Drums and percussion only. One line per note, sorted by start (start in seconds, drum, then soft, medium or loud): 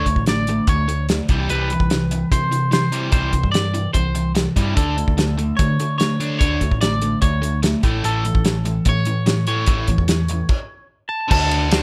0.06 kick medium
0.06 closed hi-hat medium
0.16 kick medium
0.26 snare medium
0.26 closed hi-hat medium
0.47 closed hi-hat medium
0.67 kick loud
0.67 closed hi-hat medium
0.89 closed hi-hat medium
1.09 snare loud
1.09 closed hi-hat medium
1.29 kick medium
1.29 closed hi-hat soft
1.49 closed hi-hat medium
1.70 closed hi-hat soft
1.80 kick medium
1.90 snare loud
1.90 closed hi-hat medium
2.11 closed hi-hat medium
2.32 kick loud
2.32 closed hi-hat medium
2.52 closed hi-hat medium
2.72 snare loud
2.72 closed hi-hat medium
2.92 closed hi-hat medium
3.12 kick loud
3.12 closed hi-hat medium
3.33 kick medium
3.33 closed hi-hat medium
3.44 kick medium
3.54 snare loud
3.54 closed hi-hat medium
3.74 closed hi-hat medium
3.94 kick medium
3.94 closed hi-hat medium
4.15 closed hi-hat medium
4.35 snare medium
4.35 closed hi-hat medium
4.56 kick medium
4.56 closed hi-hat medium
4.77 kick loud
4.77 closed hi-hat medium
4.98 closed hi-hat soft
5.08 kick medium
5.18 snare loud
5.18 closed hi-hat medium
5.39 closed hi-hat medium
5.59 kick loud
5.59 closed hi-hat medium
5.80 closed hi-hat medium
6.00 snare medium
6.00 closed hi-hat medium
6.20 closed hi-hat medium
6.41 kick loud
6.41 closed hi-hat medium
6.61 kick medium
6.61 closed hi-hat medium
6.71 kick medium
6.81 snare medium
6.81 closed hi-hat medium
7.02 closed hi-hat medium
7.22 kick loud
7.22 closed hi-hat medium
7.43 closed hi-hat medium
7.63 snare loud
7.63 closed hi-hat medium
7.83 kick medium
7.83 closed hi-hat soft
8.04 closed hi-hat medium
8.25 closed hi-hat medium
8.35 kick medium
8.45 snare medium
8.45 closed hi-hat medium
8.65 closed hi-hat medium
8.85 kick loud
8.85 closed hi-hat medium
9.05 closed hi-hat medium
9.26 snare loud
9.26 closed hi-hat medium
9.47 closed hi-hat soft
9.66 kick loud
9.66 closed hi-hat medium
9.88 kick medium
9.88 closed hi-hat medium
9.98 kick medium
10.08 snare medium
10.08 closed hi-hat medium
10.28 closed hi-hat medium
10.49 kick loud
10.49 crash medium
11.31 kick loud
11.31 crash loud
11.51 ride medium
11.71 snare loud
11.71 ride medium